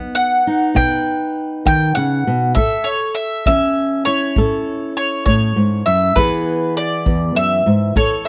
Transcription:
0.00 0.40 F#3 medium
0.00 2.53 B3 medium
0.00 0.46 D#4 medium
0.00 0.75 B4 medium
0.15 0.76 F#5 loud
0.47 2.53 D#4 medium
0.75 1.30 B2 medium
0.75 2.53 B4 medium
0.75 1.65 G5 loud
0.75 kick medium
1.65 1.96 D#3 medium
1.65 1.94 G5 loud
1.65 kick medium
1.95 2.27 C#3 medium
1.95 2.52 F#5 loud
2.27 2.57 B2 medium
2.55 3.11 A2 medium
2.55 4.37 A4 medium
2.55 2.86 E5 loud
2.55 kick medium
2.84 3.13 C#5 medium
3.15 3.45 E5 medium
3.46 4.01 E3 medium
3.46 6.13 C#4 medium
3.46 4.05 E5 loud
3.46 kick medium
4.05 6.18 E4 medium
4.05 4.92 C#5 loud
4.36 4.91 A2 medium
4.36 6.14 A4 medium
4.36 kick medium
4.97 5.24 C#5 medium
5.26 5.56 A2 medium
5.26 5.88 C#5 medium
5.26 kick medium
5.56 5.86 G#2 medium
5.86 6.16 F#2 medium
5.86 6.17 E5 medium
6.16 6.70 E2 medium
6.16 8.28 E3 medium
6.16 7.93 B3 medium
6.16 7.93 E4 medium
6.16 7.94 G#4 medium
6.16 6.77 B4 medium
6.16 kick medium
6.77 7.36 D5 medium
7.06 7.35 E2 medium
7.06 kick medium
7.35 7.66 F#2 medium
7.35 7.96 E5 medium
7.66 7.95 G#2 medium
7.96 8.28 A2 medium
7.96 8.28 A4 medium
7.96 8.24 C#5 medium
7.96 kick medium
8.25 8.28 E5 medium

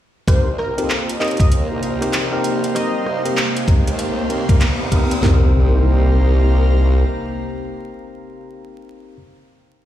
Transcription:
0.27 0.75 C2 loud
0.27 5.18 C3 medium
0.27 5.18 A#3 medium
0.27 0.48 C4 medium
0.27 5.18 D#4 medium
0.27 0.48 D#4 medium
0.27 0.48 G4 medium
0.27 5.23 G4 medium
0.27 0.48 A#4 loud
0.27 0.49 C5 medium
0.27 kick loud
0.27 cross-stick medium
0.27 closed hi-hat medium
0.27 riser medium
0.41 5.22 F5 medium
0.51 5.22 C5 medium
0.51 5.22 A#5 medium
0.58 0.80 A#4 medium
0.58 cross-stick soft
0.78 1.19 F2 loud
0.78 0.92 C4 medium
0.78 0.92 D#4 medium
0.78 0.92 G4 medium
0.78 0.92 A#4 medium
0.78 closed hi-hat medium
0.90 clap loud
1.09 closed hi-hat medium
1.20 1.68 D#2 medium
1.20 1.41 C4 medium
1.20 1.41 D#4 medium
1.20 1.41 G4 medium
1.20 1.41 A#4 medium
1.20 1.33 D#5 medium
1.20 clap medium
1.20 closed hi-hat soft
1.24 closed hi-hat soft
1.28 closed hi-hat soft
1.31 closed hi-hat soft
1.37 kick loud
1.37 closed hi-hat soft
1.40 1.48 D#5 medium
1.40 closed hi-hat medium
1.52 closed hi-hat medium
1.71 1.81 C2 medium
1.82 2.73 A#1 medium
1.82 closed hi-hat soft
2.01 2.28 C4 medium
2.01 2.28 D#4 medium
2.01 2.28 G4 medium
2.01 2.28 A#4 medium
2.01 cross-stick soft
2.01 closed hi-hat medium
2.13 clap loud
2.13 closed hi-hat medium
2.32 2.59 C4 medium
2.32 2.59 D#4 medium
2.32 2.59 G4 medium
2.32 2.59 A#4 loud
2.44 closed hi-hat medium
2.64 closed hi-hat medium
2.75 3.03 C4 loud
2.75 3.03 D#4 medium
2.75 3.03 G4 medium
2.75 3.03 A#4 loud
2.75 3.37 D#5 loud
2.75 cross-stick soft
2.75 closed hi-hat medium
3.06 3.22 C2 loud
3.06 cross-stick soft
3.25 3.39 C4 medium
3.25 3.39 D#4 medium
3.25 3.39 G4 medium
3.25 3.39 A#4 medium
3.25 closed hi-hat medium
3.37 clap loud
3.57 closed hi-hat medium
3.68 3.88 C4 medium
3.68 3.89 D#4 medium
3.68 3.89 G4 medium
3.68 3.89 A#4 medium
3.68 kick loud
3.68 closed hi-hat soft
3.87 4.46 D#2 loud
3.87 closed hi-hat medium
3.99 closed hi-hat medium
4.30 4.44 C4 medium
4.30 4.44 D#4 medium
4.30 4.44 G4 medium
4.30 4.44 A#4 medium
4.30 closed hi-hat soft
4.49 4.90 C2 loud
4.49 4.63 C4 medium
4.49 4.63 D#4 medium
4.49 4.63 G4 medium
4.49 4.63 A#4 medium
4.49 kick loud
4.49 closed hi-hat medium
4.61 clap loud
4.61 closed hi-hat medium
4.92 5.21 G2 medium
4.92 5.12 C4 medium
4.92 5.12 D#4 medium
4.92 5.12 G4 medium
4.92 5.12 A#4 loud
4.92 kick medium
4.92 closed hi-hat medium
5.11 closed hi-hat medium
5.22 7.04 C2 loud
5.22 8.46 C3 medium
5.22 8.46 A#3 medium
5.22 9.16 C4 medium
5.22 8.46 D#4 medium
5.22 9.16 D#4 medium
5.22 9.16 G4 medium
5.22 8.47 G4 medium
5.22 9.16 A#4 loud
5.22 snare loud
5.22 floor tom loud
5.22 impact medium
5.36 8.47 C5 medium
5.46 8.47 F5 medium
5.53 8.47 A#5 medium

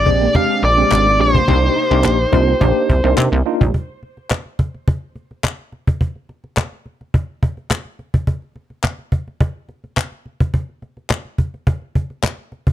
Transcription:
0.00 3.70 C3 medium
0.00 1.46 G#3 medium
0.00 1.46 D4 medium
0.00 1.44 G4 medium
0.00 0.36 D5 loud
0.06 0.28 A#1 medium
0.06 0.25 G#3 medium
0.06 0.25 C4 medium
0.06 0.25 D4 medium
0.06 0.25 G4 medium
0.06 muted clean electric guitar stroke soft
0.06 cajon bass medium
0.22 0.29 A#3 medium
0.34 0.61 G#3 medium
0.34 0.61 C4 medium
0.34 0.61 D4 medium
0.34 0.43 D4 medium
0.34 0.62 G4 medium
0.34 0.64 F5 loud
0.34 cajon bass loud
0.50 muted clean electric guitar stroke soft
0.63 0.84 A#1 medium
0.63 0.90 D5 medium
0.63 cajon slap soft
0.77 1.04 G#3 medium
0.77 1.04 C4 medium
0.77 0.86 C4 medium
0.77 1.04 D4 medium
0.77 1.05 G4 medium
0.77 cajon slap soft
0.91 1.21 G#1 medium
0.91 1.18 D5 medium
0.91 cajon slap loud
0.91 clap medium
1.06 1.14 A#3 medium
1.19 1.41 A#1 medium
1.19 1.38 G#3 medium
1.19 1.38 C4 medium
1.19 1.38 D4 medium
1.19 1.38 G4 medium
1.19 3.14 C5 medium
1.19 muted clean electric guitar stroke soft
1.19 cajon slap soft
1.35 1.42 A#3 medium
1.35 cajon bass loud
1.47 1.69 C2 loud
1.47 1.74 A#3 medium
1.47 3.72 A#3 medium
1.47 1.56 C4 medium
1.47 1.74 D4 medium
1.47 1.75 D#4 medium
1.47 3.72 D#4 medium
1.47 3.72 G4 medium
1.47 1.75 G4 medium
1.47 cajon bass loud
1.63 muted clean electric guitar stroke soft
1.76 1.85 D#4 medium
1.76 cajon slap soft
1.91 2.06 C2 loud
1.91 2.17 A#3 medium
1.91 2.18 D4 medium
1.91 2.18 D#4 medium
1.91 2.18 G4 loud
2.04 2.26 A#1 medium
2.04 2.13 C4 medium
2.04 cajon slap loud
2.04 clap medium
2.32 2.54 C2 loud
2.32 2.51 A#3 medium
2.32 2.51 D4 medium
2.32 2.51 D#4 medium
2.32 2.51 F4 loud
2.32 muted clean electric guitar stroke soft
2.32 cajon bass medium
2.48 2.55 C4 medium
2.48 cajon slap soft
2.60 2.72 A#1 loud
2.60 2.88 A#3 medium
2.60 2.88 D4 medium
2.60 2.69 D#4 medium
2.60 2.88 D#4 medium
2.60 2.88 G4 loud
2.60 cajon bass loud
2.76 muted clean electric guitar stroke soft
2.89 3.01 C2 medium
2.89 cajon bass medium
3.04 3.14 C2 medium
3.04 3.31 A#3 medium
3.04 3.12 C4 medium
3.04 3.31 D4 medium
3.04 3.31 D#4 medium
3.04 3.31 A#4 medium
3.17 3.29 C3 loud
3.17 cajon slap loud
3.17 clap loud
3.32 3.42 C2 medium
3.32 3.40 A#3 medium
3.46 3.64 A#3 medium
3.46 3.64 D4 medium
3.46 3.64 D#4 medium
3.46 3.65 F4 loud
3.46 muted clean electric guitar stroke soft
3.61 3.71 A#1 medium
3.61 3.68 G3 medium
3.61 cajon bass loud
3.74 cajon bass medium
3.89 cajon slap soft
4.03 cajon slap soft
4.17 cajon slap soft
4.31 cajon slap loud
4.31 clap medium
4.46 cajon slap soft
4.59 cajon bass medium
4.74 cajon slap soft
4.88 cajon bass loud
5.16 cajon slap soft
5.31 cajon slap soft
5.44 cajon slap loud
5.44 clap medium
5.59 cajon slap soft
5.72 cajon slap soft
5.87 cajon bass loud
6.01 cajon bass medium
6.16 cajon slap soft
6.29 cajon slap soft
6.44 cajon slap soft
6.57 cajon slap loud
6.57 clap medium
6.72 cajon slap soft
6.86 cajon slap soft
7.01 cajon slap soft
7.14 cajon bass loud
7.43 cajon bass medium
7.57 cajon slap soft
7.71 cajon slap loud
7.71 clap medium
7.85 cajon slap soft
7.99 cajon slap soft
8.14 cajon bass medium
8.27 cajon bass medium
8.42 cajon slap soft
8.56 cajon slap soft
8.70 cajon slap soft
8.84 cajon slap loud
8.84 clap medium
8.99 cajon slap soft
9.12 cajon bass medium
9.28 cajon slap soft
9.40 cajon bass loud
9.69 cajon slap soft
9.84 cajon slap soft
9.97 cajon slap loud
9.97 clap medium
10.12 cajon slap soft
10.26 cajon slap soft
10.40 cajon bass medium
10.54 cajon bass medium
10.69 cajon slap soft
10.82 cajon slap soft
10.97 cajon slap soft
11.10 cajon slap loud
11.10 clap medium
11.25 cajon slap soft
11.38 cajon bass medium
11.54 cajon slap soft
11.67 cajon bass loud
11.82 cajon slap soft
11.95 cajon bass medium
12.10 cajon slap soft
12.23 cajon slap loud
12.23 clap medium
12.38 cajon slap soft
12.52 cajon slap soft
12.67 cajon bass medium

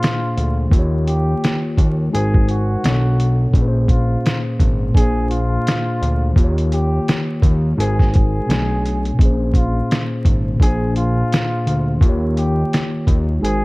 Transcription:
0.00 0.66 A#2 medium
0.00 0.67 A#3 medium
0.00 0.69 D4 medium
0.00 0.68 F4 medium
0.00 0.70 G#4 medium
0.00 0.72 C5 medium
0.00 closed hi-hat medium
0.04 snare loud
0.37 0.68 D2 medium
0.37 closed hi-hat medium
0.68 2.08 D#3 medium
0.68 2.10 A#3 medium
0.68 kick loud
0.72 1.35 D#2 loud
0.72 2.11 F4 medium
0.72 closed hi-hat medium
0.76 2.13 G4 medium
0.76 2.14 C#5 medium
1.07 1.59 G4 medium
1.07 closed hi-hat medium
1.44 snare loud
1.44 closed hi-hat medium
1.78 2.09 D#2 medium
1.78 kick medium
1.78 closed hi-hat medium
2.10 2.77 G#1 medium
2.10 2.82 G#3 medium
2.10 2.83 D#4 medium
2.10 2.84 F#4 medium
2.10 2.45 G#4 medium
2.15 2.85 A#4 medium
2.15 2.85 C5 medium
2.15 closed hi-hat loud
2.34 kick medium
2.48 3.51 F#4 medium
2.48 closed hi-hat medium
2.83 3.47 B1 medium
2.83 3.54 B2 medium
2.83 3.55 B3 medium
2.83 3.55 D4 medium
2.83 snare loud
2.83 closed hi-hat loud
2.88 3.56 A4 medium
2.88 3.57 C#5 medium
3.20 closed hi-hat medium
3.50 4.17 A#1 loud
3.50 4.89 A#2 medium
3.50 4.92 A#3 medium
3.50 kick loud
3.55 4.94 C#4 medium
3.55 4.95 G#4 medium
3.55 closed hi-hat medium
3.62 3.65 B4 medium
3.68 5.00 C5 medium
3.88 4.42 F4 medium
3.88 kick medium
3.88 closed hi-hat medium
4.26 snare loud
4.26 closed hi-hat medium
4.60 4.92 G#1 loud
4.60 kick medium
4.60 closed hi-hat medium
4.90 6.31 A#2 medium
4.90 6.32 A#3 medium
4.94 5.58 A#1 loud
4.94 6.34 D4 medium
4.94 5.28 G#4 medium
4.94 6.35 G#4 medium
4.94 kick medium
4.94 closed hi-hat loud
5.01 6.37 C5 medium
5.31 6.33 F4 medium
5.31 closed hi-hat medium
5.67 snare loud
5.67 closed hi-hat loud
6.02 6.33 D2 medium
6.02 closed hi-hat medium
6.33 7.00 D#2 loud
6.33 7.73 D#3 medium
6.33 7.75 A#3 medium
6.33 kick loud
6.38 7.76 F4 medium
6.38 7.77 G4 medium
6.38 closed hi-hat medium
6.44 7.79 C#5 medium
6.58 closed hi-hat soft
6.72 7.25 G4 medium
6.72 closed hi-hat medium
7.08 snare loud
7.08 closed hi-hat medium
7.42 7.74 D#2 loud
7.42 kick medium
7.42 closed hi-hat medium
7.75 8.41 G#1 loud
7.75 8.47 G#3 medium
7.75 8.48 D#4 medium
7.75 8.49 F#4 medium
7.80 8.11 G#4 medium
7.80 8.49 A#4 medium
7.80 8.50 C5 medium
7.80 closed hi-hat loud
7.99 kick medium
7.99 snare soft
8.14 9.16 G#4 medium
8.14 kick medium
8.14 closed hi-hat medium
8.46 9.12 B1 loud
8.46 9.18 B2 medium
8.46 9.19 B3 medium
8.46 9.19 D4 medium
8.46 closed hi-hat medium
8.50 9.20 A3 medium
8.50 9.21 C#5 medium
8.50 snare loud
8.86 closed hi-hat medium
9.05 closed hi-hat soft
9.14 10.54 A#2 medium
9.14 10.56 A#3 medium
9.19 9.82 A#1 medium
9.19 10.58 C#4 medium
9.19 10.59 G#4 medium
9.19 kick loud
9.19 closed hi-hat medium
9.25 10.61 C5 medium
9.54 10.07 F4 medium
9.54 kick medium
9.54 closed hi-hat medium
9.91 snare loud
9.91 closed hi-hat medium
10.25 10.57 G#1 medium
10.25 kick medium
10.25 closed hi-hat medium
10.55 11.96 A#2 medium
10.55 11.97 A#3 medium
10.60 11.23 A#1 loud
10.60 11.99 D4 medium
10.60 10.93 G#4 medium
10.60 kick medium
10.60 closed hi-hat loud
10.64 12.00 G#4 medium
10.64 12.02 C5 medium
10.96 11.98 F4 medium
10.96 closed hi-hat medium
11.32 snare loud
11.32 closed hi-hat medium
11.67 11.98 D2 medium
11.67 closed hi-hat medium
11.98 12.64 D#2 loud
11.98 13.38 D#3 medium
11.98 13.39 A#3 medium
11.98 kick loud
12.02 13.41 F4 medium
12.02 13.42 G4 medium
12.02 closed hi-hat medium
12.09 13.44 C#5 medium
12.37 12.89 G4 medium
12.37 closed hi-hat medium
12.73 snare loud
12.73 closed hi-hat medium
13.07 13.39 D#2 medium
13.07 kick medium
13.07 closed hi-hat medium
13.40 13.65 G#1 loud
13.40 13.65 G#3 medium
13.40 13.65 D#4 medium
13.40 13.65 F#4 medium
13.44 13.65 G#4 medium
13.44 13.65 A#4 medium
13.44 13.65 C5 medium
13.44 closed hi-hat loud

